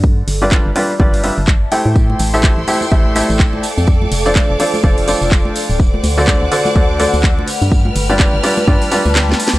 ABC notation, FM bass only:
X:1
M:4/4
L:1/16
Q:"Swing 16ths" 1/4=125
K:Gmix
V:1 name="FM bass" clef=bass
G,,2 G,,,3 G,,, z2 G,,,3 G,,,3 z A,,- | A,,2 A,,,3 A,,, z2 A,,,3 A,,,3 z F,,- | F,,2 F,,,3 F,,, z2 F,,,3 F,,,3 z D,,,- | D,,,2 D,,3 D,, z2 D,,3 D,,3 z G,,- |
G,,2 G,,,3 G,,, z2 G,, z2 D,,3 z D,, |]